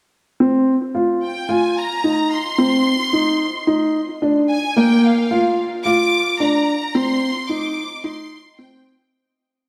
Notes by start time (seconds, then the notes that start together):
0.40 C4
0.95 F4
1.23 G5
1.49 F4 G#5
1.77 A#5
2.04 D#4
2.31 C6
2.58 C4
3.13 D#4
3.67 D#4
4.22 D4
4.49 G#5
4.76 A#3 G5
5.04 F5
5.31 F4
5.85 F4 D6
6.40 D4 A#5
6.95 C4 C6
7.49 D#4 D6
8.04 D#4 C6
8.59 C4 G5